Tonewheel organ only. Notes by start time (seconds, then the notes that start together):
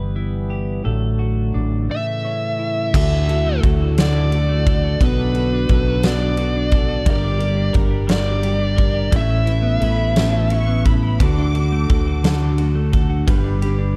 Already playing: E3 G3 B3
0.85 D3 F#3 A3
1.89 C#3 E3